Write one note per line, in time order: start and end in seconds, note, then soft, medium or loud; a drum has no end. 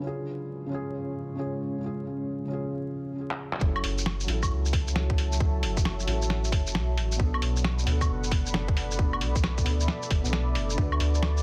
0.00 0.65 C#3 medium
0.00 3.14 G#3 medium
0.00 0.68 C#4 medium
0.00 3.14 C#4 medium
0.00 3.14 F4 medium
0.00 3.14 C#5 medium
0.04 0.69 F4 medium
0.04 0.70 G#4 medium
0.66 1.33 C#3 medium
0.66 1.35 C#4 medium
0.71 1.36 F4 medium
0.71 1.38 G#4 medium
1.35 1.77 C#3 medium
1.35 1.79 C#4 medium
1.35 1.80 F4 medium
1.39 1.81 G#4 medium
1.78 2.44 C#3 medium
1.78 2.46 C#4 medium
1.84 2.48 F4 medium
1.84 2.49 G#4 medium
2.45 3.57 C#3 medium
2.45 3.58 C#4 medium
2.51 3.60 F4 medium
2.51 3.61 G#4 medium
3.31 clap medium
3.53 clap medium
3.57 3.82 F#1 medium
3.57 4.22 F#3 medium
3.57 4.25 C#4 medium
3.57 7.16 F#4 medium
3.57 7.16 C#5 medium
3.57 7.16 E5 medium
3.57 7.16 A5 medium
3.57 kick loud
3.63 4.27 E4 medium
3.63 4.28 A4 medium
3.76 claves medium
3.84 4.27 F#1 medium
3.84 open hi-hat medium
3.98 shaker medium
4.06 snare loud
4.06 claves soft
4.20 4.91 F#3 medium
4.20 shaker soft
4.27 4.49 A1 medium
4.27 4.93 C#4 medium
4.27 4.94 E4 medium
4.27 open hi-hat medium
4.32 4.95 A4 loud
4.43 kick medium
4.43 claves medium
4.43 shaker medium
4.51 5.64 C#2 medium
4.65 shaker soft
4.73 kick loud
4.73 open hi-hat medium
4.88 shaker medium
4.93 5.35 F#3 medium
4.93 5.38 C#4 medium
4.93 5.39 E4 medium
4.93 snare loud
4.97 5.39 A4 medium
5.10 kick loud
5.18 open hi-hat medium
5.32 shaker medium
5.37 6.02 F#3 medium
5.37 6.05 C#4 medium
5.37 kick loud
5.42 6.06 E4 medium
5.42 6.08 A4 medium
5.63 6.06 F#1 medium
5.63 open hi-hat medium
5.77 kick loud
5.77 shaker medium
5.85 snare loud
5.85 claves soft
6.00 7.15 F#3 medium
6.00 shaker soft
6.06 6.54 A1 medium
6.06 7.17 C#4 medium
6.06 7.18 E4 medium
6.06 open hi-hat medium
6.11 7.19 A4 medium
6.22 shaker medium
6.30 snare medium
6.44 shaker soft
6.52 6.76 F#1 medium
6.52 kick loud
6.52 open hi-hat medium
6.67 shaker medium
6.75 6.99 B1 medium
6.75 snare loud
6.97 7.18 A1 medium
6.97 open hi-hat medium
7.12 7.82 B2 medium
7.12 shaker medium
7.18 7.41 B1 medium
7.18 7.84 B3 medium
7.18 7.85 D4 medium
7.18 11.43 A4 medium
7.18 11.43 D5 medium
7.18 8.97 F#5 medium
7.18 10.74 B5 medium
7.18 kick loud
7.24 7.87 A4 medium
7.34 claves medium
7.42 7.86 B1 medium
7.42 open hi-hat medium
7.56 shaker medium
7.64 snare loud
7.64 claves soft
7.79 shaker soft
7.83 8.08 D2 medium
7.83 8.50 B2 medium
7.83 8.52 B3 medium
7.83 open hi-hat medium
7.89 8.53 D4 medium
7.89 8.54 A4 loud
8.01 kick medium
8.01 claves medium
8.01 shaker medium
8.09 9.23 F#1 medium
8.24 shaker soft
8.32 kick loud
8.32 open hi-hat medium
8.46 shaker medium
8.52 8.94 B2 medium
8.52 8.96 B3 medium
8.52 8.97 D4 medium
8.52 8.98 A4 medium
8.52 snare loud
8.68 kick loud
8.77 open hi-hat medium
8.91 9.60 B2 medium
8.91 shaker medium
8.98 9.63 B3 medium
8.98 9.65 D4 medium
8.98 10.76 E5 medium
8.98 kick loud
9.03 9.66 A4 medium
9.13 claves medium
9.21 9.65 B1 medium
9.21 open hi-hat medium
9.36 kick loud
9.36 shaker medium
9.44 snare loud
9.44 claves soft
9.58 kick medium
9.58 shaker soft
9.62 9.87 D2 medium
9.62 10.20 B2 medium
9.62 10.21 B3 medium
9.62 open hi-hat medium
9.67 10.23 D4 medium
9.67 10.24 A4 medium
9.80 shaker medium
9.88 snare medium
10.02 shaker soft
10.11 10.24 F#1 loud
10.11 kick loud
10.11 open hi-hat medium
10.21 10.57 B1 medium
10.21 10.74 B2 medium
10.21 10.75 B3 medium
10.21 shaker medium
10.27 10.75 D4 medium
10.27 10.78 A4 loud
10.33 snare loud
10.55 10.76 F#1 medium
10.55 open hi-hat medium
10.70 shaker medium
10.74 11.39 D3 medium
10.74 11.42 D4 medium
10.74 11.43 F#5 medium
10.78 10.99 D2 loud
10.78 11.43 F#4 medium
10.78 11.43 B4 medium
10.78 11.43 B5 medium
10.78 kick loud
10.92 claves medium
11.00 11.43 D2 medium
11.00 open hi-hat medium
11.14 shaker medium
11.23 snare loud
11.23 claves soft
11.37 shaker soft